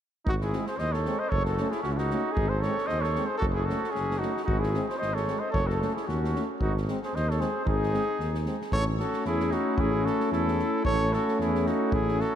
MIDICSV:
0, 0, Header, 1, 7, 480
1, 0, Start_track
1, 0, Tempo, 528169
1, 235, Time_signature, 2, 2, 24, 8
1, 7435, Tempo, 533333
1, 11188, End_track
2, 0, Start_track
2, 0, Title_t, "Trumpet"
2, 0, Program_c, 0, 56
2, 261, Note_on_c, 0, 66, 98
2, 315, Note_off_c, 0, 66, 0
2, 391, Note_on_c, 0, 68, 81
2, 604, Note_off_c, 0, 68, 0
2, 612, Note_on_c, 0, 72, 74
2, 719, Note_on_c, 0, 75, 90
2, 733, Note_off_c, 0, 72, 0
2, 841, Note_on_c, 0, 73, 82
2, 854, Note_off_c, 0, 75, 0
2, 1081, Note_on_c, 0, 75, 79
2, 1095, Note_off_c, 0, 73, 0
2, 1176, Note_on_c, 0, 73, 110
2, 1190, Note_off_c, 0, 75, 0
2, 1314, Note_off_c, 0, 73, 0
2, 1320, Note_on_c, 0, 69, 79
2, 1545, Note_on_c, 0, 68, 77
2, 1559, Note_off_c, 0, 69, 0
2, 1659, Note_off_c, 0, 68, 0
2, 1664, Note_on_c, 0, 66, 77
2, 1752, Note_on_c, 0, 64, 66
2, 1766, Note_off_c, 0, 66, 0
2, 1791, Note_on_c, 0, 66, 93
2, 1805, Note_off_c, 0, 64, 0
2, 2108, Note_on_c, 0, 68, 119
2, 2122, Note_off_c, 0, 66, 0
2, 2261, Note_on_c, 0, 72, 99
2, 2275, Note_off_c, 0, 68, 0
2, 2379, Note_on_c, 0, 73, 97
2, 2393, Note_off_c, 0, 72, 0
2, 2611, Note_on_c, 0, 75, 94
2, 2624, Note_off_c, 0, 73, 0
2, 2727, Note_on_c, 0, 73, 85
2, 2741, Note_off_c, 0, 75, 0
2, 2962, Note_on_c, 0, 72, 78
2, 2976, Note_off_c, 0, 73, 0
2, 3063, Note_off_c, 0, 72, 0
2, 3068, Note_on_c, 0, 69, 102
2, 3138, Note_off_c, 0, 69, 0
2, 3221, Note_on_c, 0, 68, 82
2, 3323, Note_on_c, 0, 69, 79
2, 3336, Note_off_c, 0, 68, 0
2, 3556, Note_on_c, 0, 68, 88
2, 3570, Note_off_c, 0, 69, 0
2, 3808, Note_on_c, 0, 66, 77
2, 3822, Note_off_c, 0, 68, 0
2, 4035, Note_off_c, 0, 66, 0
2, 4041, Note_on_c, 0, 66, 94
2, 4178, Note_on_c, 0, 68, 82
2, 4192, Note_off_c, 0, 66, 0
2, 4432, Note_off_c, 0, 68, 0
2, 4443, Note_on_c, 0, 72, 79
2, 4536, Note_on_c, 0, 75, 83
2, 4550, Note_off_c, 0, 72, 0
2, 4679, Note_on_c, 0, 73, 75
2, 4693, Note_off_c, 0, 75, 0
2, 4905, Note_on_c, 0, 75, 78
2, 4918, Note_off_c, 0, 73, 0
2, 5016, Note_off_c, 0, 75, 0
2, 5021, Note_on_c, 0, 73, 110
2, 5155, Note_on_c, 0, 69, 90
2, 5169, Note_off_c, 0, 73, 0
2, 5402, Note_on_c, 0, 68, 69
2, 5415, Note_off_c, 0, 69, 0
2, 5528, Note_on_c, 0, 66, 84
2, 5541, Note_off_c, 0, 68, 0
2, 5860, Note_off_c, 0, 66, 0
2, 6000, Note_on_c, 0, 66, 90
2, 6121, Note_off_c, 0, 66, 0
2, 6406, Note_on_c, 0, 72, 77
2, 6501, Note_on_c, 0, 75, 86
2, 6515, Note_off_c, 0, 72, 0
2, 6639, Note_on_c, 0, 73, 70
2, 6653, Note_off_c, 0, 75, 0
2, 6727, Note_on_c, 0, 72, 81
2, 6741, Note_off_c, 0, 73, 0
2, 6962, Note_off_c, 0, 72, 0
2, 6979, Note_on_c, 0, 68, 100
2, 7653, Note_off_c, 0, 68, 0
2, 7931, Note_on_c, 0, 73, 119
2, 8036, Note_off_c, 0, 73, 0
2, 8168, Note_on_c, 0, 69, 91
2, 8385, Note_off_c, 0, 69, 0
2, 8412, Note_on_c, 0, 68, 86
2, 8652, Note_on_c, 0, 66, 88
2, 8665, Note_off_c, 0, 68, 0
2, 8897, Note_on_c, 0, 68, 109
2, 8911, Note_off_c, 0, 66, 0
2, 9125, Note_on_c, 0, 69, 94
2, 9138, Note_off_c, 0, 68, 0
2, 9353, Note_off_c, 0, 69, 0
2, 9358, Note_on_c, 0, 69, 92
2, 9803, Note_off_c, 0, 69, 0
2, 9836, Note_on_c, 0, 73, 123
2, 10091, Note_on_c, 0, 69, 99
2, 10104, Note_off_c, 0, 73, 0
2, 10324, Note_off_c, 0, 69, 0
2, 10334, Note_on_c, 0, 68, 83
2, 10574, Note_on_c, 0, 66, 93
2, 10587, Note_off_c, 0, 68, 0
2, 10817, Note_on_c, 0, 68, 121
2, 10831, Note_off_c, 0, 66, 0
2, 11062, Note_on_c, 0, 69, 99
2, 11076, Note_off_c, 0, 68, 0
2, 11188, Note_off_c, 0, 69, 0
2, 11188, End_track
3, 0, Start_track
3, 0, Title_t, "Flugelhorn"
3, 0, Program_c, 1, 56
3, 228, Note_on_c, 1, 63, 71
3, 290, Note_off_c, 1, 63, 0
3, 375, Note_on_c, 1, 64, 59
3, 595, Note_off_c, 1, 64, 0
3, 619, Note_on_c, 1, 68, 65
3, 699, Note_on_c, 1, 72, 87
3, 713, Note_off_c, 1, 68, 0
3, 842, Note_on_c, 1, 69, 81
3, 856, Note_off_c, 1, 72, 0
3, 1085, Note_on_c, 1, 72, 77
3, 1099, Note_off_c, 1, 69, 0
3, 1181, Note_on_c, 1, 69, 93
3, 1194, Note_off_c, 1, 72, 0
3, 1311, Note_off_c, 1, 69, 0
3, 1317, Note_on_c, 1, 66, 65
3, 1551, Note_on_c, 1, 64, 62
3, 1565, Note_off_c, 1, 66, 0
3, 1644, Note_off_c, 1, 64, 0
3, 1649, Note_on_c, 1, 61, 82
3, 1749, Note_off_c, 1, 61, 0
3, 1749, Note_on_c, 1, 61, 62
3, 1797, Note_on_c, 1, 63, 87
3, 1810, Note_off_c, 1, 61, 0
3, 2117, Note_off_c, 1, 63, 0
3, 2117, Note_on_c, 1, 63, 80
3, 2268, Note_on_c, 1, 68, 70
3, 2282, Note_off_c, 1, 63, 0
3, 2353, Note_on_c, 1, 69, 76
3, 2366, Note_off_c, 1, 68, 0
3, 2602, Note_on_c, 1, 72, 86
3, 2615, Note_off_c, 1, 69, 0
3, 2746, Note_on_c, 1, 69, 73
3, 2759, Note_off_c, 1, 72, 0
3, 2980, Note_on_c, 1, 68, 64
3, 2994, Note_off_c, 1, 69, 0
3, 3072, Note_off_c, 1, 68, 0
3, 3078, Note_on_c, 1, 66, 80
3, 3146, Note_off_c, 1, 66, 0
3, 3203, Note_on_c, 1, 64, 62
3, 3301, Note_on_c, 1, 66, 71
3, 3314, Note_off_c, 1, 64, 0
3, 3554, Note_on_c, 1, 61, 72
3, 3567, Note_off_c, 1, 66, 0
3, 3796, Note_on_c, 1, 63, 69
3, 3809, Note_off_c, 1, 61, 0
3, 4029, Note_off_c, 1, 63, 0
3, 4035, Note_on_c, 1, 63, 76
3, 4167, Note_on_c, 1, 64, 61
3, 4180, Note_off_c, 1, 63, 0
3, 4402, Note_off_c, 1, 64, 0
3, 4408, Note_on_c, 1, 68, 68
3, 4513, Note_on_c, 1, 72, 81
3, 4527, Note_off_c, 1, 68, 0
3, 4668, Note_on_c, 1, 69, 68
3, 4681, Note_off_c, 1, 72, 0
3, 4902, Note_on_c, 1, 72, 63
3, 4916, Note_off_c, 1, 69, 0
3, 4999, Note_off_c, 1, 72, 0
3, 5004, Note_on_c, 1, 69, 85
3, 5149, Note_on_c, 1, 66, 62
3, 5162, Note_off_c, 1, 69, 0
3, 5404, Note_on_c, 1, 64, 61
3, 5418, Note_off_c, 1, 66, 0
3, 5502, Note_on_c, 1, 61, 74
3, 5516, Note_off_c, 1, 64, 0
3, 5857, Note_off_c, 1, 61, 0
3, 6003, Note_on_c, 1, 63, 69
3, 6122, Note_off_c, 1, 63, 0
3, 6388, Note_on_c, 1, 68, 72
3, 6498, Note_on_c, 1, 72, 87
3, 6511, Note_off_c, 1, 68, 0
3, 6626, Note_on_c, 1, 69, 78
3, 6640, Note_off_c, 1, 72, 0
3, 6728, Note_on_c, 1, 68, 77
3, 6742, Note_off_c, 1, 69, 0
3, 6950, Note_off_c, 1, 68, 0
3, 6956, Note_on_c, 1, 63, 73
3, 7641, Note_off_c, 1, 63, 0
3, 7922, Note_on_c, 1, 69, 87
3, 8029, Note_off_c, 1, 69, 0
3, 8169, Note_on_c, 1, 66, 73
3, 8385, Note_off_c, 1, 66, 0
3, 8403, Note_on_c, 1, 64, 90
3, 8629, Note_on_c, 1, 63, 77
3, 8642, Note_off_c, 1, 64, 0
3, 8862, Note_on_c, 1, 64, 78
3, 8876, Note_off_c, 1, 63, 0
3, 9118, Note_on_c, 1, 66, 69
3, 9131, Note_off_c, 1, 64, 0
3, 9352, Note_off_c, 1, 66, 0
3, 9357, Note_on_c, 1, 64, 86
3, 9803, Note_off_c, 1, 64, 0
3, 9845, Note_on_c, 1, 69, 96
3, 10111, Note_on_c, 1, 66, 78
3, 10125, Note_off_c, 1, 69, 0
3, 10332, Note_off_c, 1, 66, 0
3, 10337, Note_on_c, 1, 64, 81
3, 10575, Note_on_c, 1, 63, 70
3, 10589, Note_off_c, 1, 64, 0
3, 10806, Note_on_c, 1, 64, 77
3, 10820, Note_off_c, 1, 63, 0
3, 11051, Note_on_c, 1, 66, 73
3, 11065, Note_off_c, 1, 64, 0
3, 11188, Note_off_c, 1, 66, 0
3, 11188, End_track
4, 0, Start_track
4, 0, Title_t, "Trombone"
4, 0, Program_c, 2, 57
4, 483, Note_on_c, 2, 60, 49
4, 578, Note_off_c, 2, 60, 0
4, 963, Note_on_c, 2, 60, 56
4, 1057, Note_off_c, 2, 60, 0
4, 1451, Note_on_c, 2, 61, 62
4, 1544, Note_off_c, 2, 61, 0
4, 1921, Note_on_c, 2, 61, 63
4, 2016, Note_off_c, 2, 61, 0
4, 2412, Note_on_c, 2, 60, 61
4, 2504, Note_off_c, 2, 60, 0
4, 2879, Note_on_c, 2, 60, 63
4, 2974, Note_off_c, 2, 60, 0
4, 3350, Note_on_c, 2, 61, 49
4, 3446, Note_off_c, 2, 61, 0
4, 3829, Note_on_c, 2, 61, 52
4, 3926, Note_off_c, 2, 61, 0
4, 4329, Note_on_c, 2, 60, 55
4, 4422, Note_off_c, 2, 60, 0
4, 4799, Note_on_c, 2, 60, 53
4, 4894, Note_off_c, 2, 60, 0
4, 5286, Note_on_c, 2, 61, 56
4, 5379, Note_off_c, 2, 61, 0
4, 5767, Note_on_c, 2, 61, 62
4, 5860, Note_off_c, 2, 61, 0
4, 6263, Note_on_c, 2, 60, 63
4, 6353, Note_off_c, 2, 60, 0
4, 6716, Note_on_c, 2, 60, 56
4, 6812, Note_off_c, 2, 60, 0
4, 7199, Note_on_c, 2, 60, 54
4, 7295, Note_off_c, 2, 60, 0
4, 7683, Note_on_c, 2, 60, 51
4, 7778, Note_off_c, 2, 60, 0
4, 7924, Note_on_c, 2, 61, 66
4, 9802, Note_off_c, 2, 61, 0
4, 9833, Note_on_c, 2, 61, 75
4, 11188, Note_off_c, 2, 61, 0
4, 11188, End_track
5, 0, Start_track
5, 0, Title_t, "Euphonium"
5, 0, Program_c, 3, 58
5, 497, Note_on_c, 3, 56, 59
5, 589, Note_off_c, 3, 56, 0
5, 966, Note_on_c, 3, 56, 54
5, 1060, Note_off_c, 3, 56, 0
5, 1451, Note_on_c, 3, 57, 65
5, 1544, Note_off_c, 3, 57, 0
5, 1922, Note_on_c, 3, 57, 62
5, 2017, Note_off_c, 3, 57, 0
5, 2401, Note_on_c, 3, 56, 61
5, 2496, Note_off_c, 3, 56, 0
5, 2875, Note_on_c, 3, 56, 54
5, 2971, Note_off_c, 3, 56, 0
5, 3353, Note_on_c, 3, 57, 61
5, 3449, Note_off_c, 3, 57, 0
5, 3844, Note_on_c, 3, 57, 53
5, 3938, Note_off_c, 3, 57, 0
5, 4317, Note_on_c, 3, 56, 54
5, 4412, Note_off_c, 3, 56, 0
5, 4809, Note_on_c, 3, 56, 57
5, 4902, Note_off_c, 3, 56, 0
5, 5285, Note_on_c, 3, 57, 65
5, 5378, Note_off_c, 3, 57, 0
5, 5763, Note_on_c, 3, 57, 57
5, 5857, Note_off_c, 3, 57, 0
5, 6245, Note_on_c, 3, 56, 57
5, 6339, Note_off_c, 3, 56, 0
5, 6727, Note_on_c, 3, 56, 60
5, 6821, Note_off_c, 3, 56, 0
5, 7198, Note_on_c, 3, 56, 57
5, 7295, Note_off_c, 3, 56, 0
5, 7685, Note_on_c, 3, 56, 45
5, 7779, Note_off_c, 3, 56, 0
5, 7923, Note_on_c, 3, 57, 65
5, 9802, Note_off_c, 3, 57, 0
5, 9845, Note_on_c, 3, 57, 78
5, 11188, Note_off_c, 3, 57, 0
5, 11188, End_track
6, 0, Start_track
6, 0, Title_t, "Tuba"
6, 0, Program_c, 4, 58
6, 234, Note_on_c, 4, 32, 105
6, 499, Note_off_c, 4, 32, 0
6, 712, Note_on_c, 4, 39, 82
6, 977, Note_off_c, 4, 39, 0
6, 1198, Note_on_c, 4, 30, 113
6, 1461, Note_off_c, 4, 30, 0
6, 1675, Note_on_c, 4, 37, 89
6, 1939, Note_off_c, 4, 37, 0
6, 2151, Note_on_c, 4, 32, 114
6, 2416, Note_off_c, 4, 32, 0
6, 2627, Note_on_c, 4, 39, 83
6, 2892, Note_off_c, 4, 39, 0
6, 3098, Note_on_c, 4, 30, 107
6, 3366, Note_off_c, 4, 30, 0
6, 3598, Note_on_c, 4, 30, 80
6, 3860, Note_off_c, 4, 30, 0
6, 4072, Note_on_c, 4, 32, 112
6, 4336, Note_off_c, 4, 32, 0
6, 4566, Note_on_c, 4, 32, 79
6, 4826, Note_off_c, 4, 32, 0
6, 5036, Note_on_c, 4, 30, 111
6, 5299, Note_off_c, 4, 30, 0
6, 5523, Note_on_c, 4, 39, 91
6, 5784, Note_off_c, 4, 39, 0
6, 6004, Note_on_c, 4, 32, 104
6, 6266, Note_off_c, 4, 32, 0
6, 6489, Note_on_c, 4, 39, 95
6, 6750, Note_off_c, 4, 39, 0
6, 6961, Note_on_c, 4, 32, 106
6, 7225, Note_off_c, 4, 32, 0
6, 7442, Note_on_c, 4, 39, 74
6, 7704, Note_off_c, 4, 39, 0
6, 7922, Note_on_c, 4, 33, 107
6, 8184, Note_off_c, 4, 33, 0
6, 8400, Note_on_c, 4, 40, 85
6, 8662, Note_off_c, 4, 40, 0
6, 8885, Note_on_c, 4, 33, 103
6, 9146, Note_off_c, 4, 33, 0
6, 9355, Note_on_c, 4, 40, 93
6, 9619, Note_off_c, 4, 40, 0
6, 9842, Note_on_c, 4, 33, 114
6, 10105, Note_off_c, 4, 33, 0
6, 10323, Note_on_c, 4, 40, 93
6, 10586, Note_off_c, 4, 40, 0
6, 10803, Note_on_c, 4, 33, 104
6, 11067, Note_off_c, 4, 33, 0
6, 11188, End_track
7, 0, Start_track
7, 0, Title_t, "Drums"
7, 242, Note_on_c, 9, 36, 97
7, 333, Note_off_c, 9, 36, 0
7, 373, Note_on_c, 9, 38, 26
7, 464, Note_off_c, 9, 38, 0
7, 480, Note_on_c, 9, 38, 33
7, 571, Note_off_c, 9, 38, 0
7, 605, Note_on_c, 9, 38, 26
7, 696, Note_off_c, 9, 38, 0
7, 713, Note_on_c, 9, 38, 27
7, 804, Note_off_c, 9, 38, 0
7, 850, Note_on_c, 9, 38, 28
7, 941, Note_off_c, 9, 38, 0
7, 956, Note_on_c, 9, 38, 28
7, 1047, Note_off_c, 9, 38, 0
7, 1198, Note_on_c, 9, 36, 83
7, 1289, Note_off_c, 9, 36, 0
7, 1321, Note_on_c, 9, 38, 24
7, 1412, Note_off_c, 9, 38, 0
7, 1429, Note_on_c, 9, 38, 26
7, 1520, Note_off_c, 9, 38, 0
7, 1560, Note_on_c, 9, 38, 27
7, 1651, Note_off_c, 9, 38, 0
7, 1666, Note_on_c, 9, 38, 24
7, 1757, Note_off_c, 9, 38, 0
7, 1800, Note_on_c, 9, 38, 25
7, 1891, Note_off_c, 9, 38, 0
7, 1910, Note_on_c, 9, 38, 26
7, 2001, Note_off_c, 9, 38, 0
7, 2152, Note_on_c, 9, 36, 97
7, 2243, Note_off_c, 9, 36, 0
7, 2385, Note_on_c, 9, 38, 30
7, 2476, Note_off_c, 9, 38, 0
7, 2525, Note_on_c, 9, 38, 25
7, 2616, Note_off_c, 9, 38, 0
7, 2627, Note_on_c, 9, 38, 22
7, 2718, Note_off_c, 9, 38, 0
7, 2758, Note_on_c, 9, 38, 22
7, 2849, Note_off_c, 9, 38, 0
7, 2867, Note_on_c, 9, 38, 27
7, 2957, Note_off_c, 9, 38, 0
7, 3109, Note_on_c, 9, 36, 88
7, 3200, Note_off_c, 9, 36, 0
7, 3356, Note_on_c, 9, 38, 30
7, 3447, Note_off_c, 9, 38, 0
7, 3489, Note_on_c, 9, 38, 23
7, 3580, Note_off_c, 9, 38, 0
7, 3591, Note_on_c, 9, 38, 25
7, 3682, Note_off_c, 9, 38, 0
7, 3733, Note_on_c, 9, 38, 23
7, 3824, Note_off_c, 9, 38, 0
7, 3837, Note_on_c, 9, 38, 24
7, 3928, Note_off_c, 9, 38, 0
7, 3971, Note_on_c, 9, 38, 25
7, 4062, Note_off_c, 9, 38, 0
7, 4071, Note_on_c, 9, 36, 86
7, 4162, Note_off_c, 9, 36, 0
7, 4208, Note_on_c, 9, 38, 24
7, 4299, Note_off_c, 9, 38, 0
7, 4307, Note_on_c, 9, 38, 29
7, 4398, Note_off_c, 9, 38, 0
7, 4450, Note_on_c, 9, 38, 25
7, 4541, Note_off_c, 9, 38, 0
7, 4558, Note_on_c, 9, 38, 23
7, 4649, Note_off_c, 9, 38, 0
7, 4694, Note_on_c, 9, 38, 22
7, 4785, Note_off_c, 9, 38, 0
7, 4793, Note_on_c, 9, 38, 29
7, 4884, Note_off_c, 9, 38, 0
7, 5037, Note_on_c, 9, 36, 91
7, 5128, Note_off_c, 9, 36, 0
7, 5175, Note_on_c, 9, 38, 21
7, 5266, Note_off_c, 9, 38, 0
7, 5288, Note_on_c, 9, 38, 28
7, 5379, Note_off_c, 9, 38, 0
7, 5424, Note_on_c, 9, 38, 24
7, 5515, Note_off_c, 9, 38, 0
7, 5530, Note_on_c, 9, 38, 26
7, 5621, Note_off_c, 9, 38, 0
7, 5674, Note_on_c, 9, 38, 26
7, 5765, Note_off_c, 9, 38, 0
7, 5773, Note_on_c, 9, 38, 28
7, 5864, Note_off_c, 9, 38, 0
7, 6004, Note_on_c, 9, 36, 82
7, 6095, Note_off_c, 9, 36, 0
7, 6155, Note_on_c, 9, 38, 23
7, 6246, Note_off_c, 9, 38, 0
7, 6250, Note_on_c, 9, 38, 27
7, 6341, Note_off_c, 9, 38, 0
7, 6388, Note_on_c, 9, 38, 25
7, 6479, Note_off_c, 9, 38, 0
7, 6505, Note_on_c, 9, 38, 23
7, 6596, Note_off_c, 9, 38, 0
7, 6639, Note_on_c, 9, 38, 22
7, 6730, Note_off_c, 9, 38, 0
7, 6731, Note_on_c, 9, 38, 26
7, 6822, Note_off_c, 9, 38, 0
7, 6969, Note_on_c, 9, 36, 88
7, 7060, Note_off_c, 9, 36, 0
7, 7118, Note_on_c, 9, 38, 24
7, 7209, Note_off_c, 9, 38, 0
7, 7215, Note_on_c, 9, 38, 30
7, 7305, Note_off_c, 9, 38, 0
7, 7453, Note_on_c, 9, 38, 23
7, 7543, Note_off_c, 9, 38, 0
7, 7581, Note_on_c, 9, 38, 27
7, 7671, Note_off_c, 9, 38, 0
7, 7684, Note_on_c, 9, 38, 24
7, 7774, Note_off_c, 9, 38, 0
7, 7824, Note_on_c, 9, 38, 28
7, 7914, Note_off_c, 9, 38, 0
7, 7921, Note_on_c, 9, 36, 87
7, 8011, Note_off_c, 9, 36, 0
7, 8166, Note_on_c, 9, 38, 29
7, 8256, Note_off_c, 9, 38, 0
7, 8289, Note_on_c, 9, 38, 23
7, 8379, Note_off_c, 9, 38, 0
7, 8396, Note_on_c, 9, 38, 23
7, 8486, Note_off_c, 9, 38, 0
7, 8531, Note_on_c, 9, 38, 26
7, 8621, Note_off_c, 9, 38, 0
7, 8634, Note_on_c, 9, 38, 25
7, 8724, Note_off_c, 9, 38, 0
7, 8871, Note_on_c, 9, 36, 104
7, 8961, Note_off_c, 9, 36, 0
7, 9127, Note_on_c, 9, 38, 28
7, 9217, Note_off_c, 9, 38, 0
7, 9253, Note_on_c, 9, 38, 25
7, 9343, Note_off_c, 9, 38, 0
7, 9364, Note_on_c, 9, 38, 25
7, 9454, Note_off_c, 9, 38, 0
7, 9501, Note_on_c, 9, 38, 26
7, 9591, Note_off_c, 9, 38, 0
7, 9602, Note_on_c, 9, 38, 26
7, 9692, Note_off_c, 9, 38, 0
7, 9835, Note_on_c, 9, 36, 91
7, 9925, Note_off_c, 9, 36, 0
7, 10089, Note_on_c, 9, 38, 32
7, 10179, Note_off_c, 9, 38, 0
7, 10226, Note_on_c, 9, 38, 23
7, 10316, Note_off_c, 9, 38, 0
7, 10337, Note_on_c, 9, 38, 26
7, 10427, Note_off_c, 9, 38, 0
7, 10465, Note_on_c, 9, 38, 27
7, 10555, Note_off_c, 9, 38, 0
7, 10567, Note_on_c, 9, 38, 28
7, 10657, Note_off_c, 9, 38, 0
7, 10802, Note_on_c, 9, 36, 107
7, 10892, Note_off_c, 9, 36, 0
7, 10946, Note_on_c, 9, 38, 26
7, 11036, Note_off_c, 9, 38, 0
7, 11056, Note_on_c, 9, 38, 31
7, 11146, Note_off_c, 9, 38, 0
7, 11188, End_track
0, 0, End_of_file